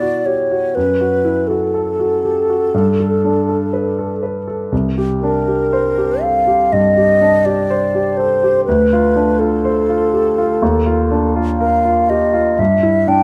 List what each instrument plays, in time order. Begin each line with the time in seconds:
Already playing: grand piano B2 E4 F#4 G4, flute D5
0.02 grand piano F#4
0.26 grand piano G4, flute C#5
0.51 grand piano F#4
0.75 grand piano F#2, flute B4
1.01 grand piano F#4
1.25 grand piano E4
1.47 grand piano F#4, flute A4
1.74 grand piano A4
2.00 grand piano F#4
2.24 grand piano G4
2.50 grand piano F#4
2.74 grand piano G2
3.00 grand piano A4
3.24 grand piano D4
3.49 grand piano A4
3.73 grand piano B4
3.99 grand piano A4
4.23 grand piano B4
4.48 grand piano A4
4.72 grand piano C2
4.98 grand piano G4
5.21 grand piano D4, flute A#4
5.48 grand piano G4
5.73 grand piano C5
5.98 grand piano G4
6.22 grand piano A4, flute F5
6.47 grand piano G4
6.72 grand piano G2, flute D#5
6.97 grand piano G4
7.21 grand piano D4
7.45 grand piano G4, flute D5
7.70 grand piano C5
7.95 grand piano G4
8.17 grand piano A4, flute C5
8.44 grand piano G4
8.65 grand piano D2, flute B4
8.93 grand piano F4
9.16 grand piano D4
9.39 grand piano F4, flute A4
9.65 grand piano C5
9.89 grand piano F4
10.13 grand piano G4
10.38 grand piano F4
10.62 grand piano D#2
10.86 grand piano F4
11.11 grand piano D4
11.36 grand piano F4
11.58 grand piano A#4, flute F5
11.85 grand piano F4
12.10 grand piano G4, flute D#5
12.34 grand piano F4
12.59 grand piano G2, flute E5
12.83 grand piano E4
13.07 grand piano D4, flute G5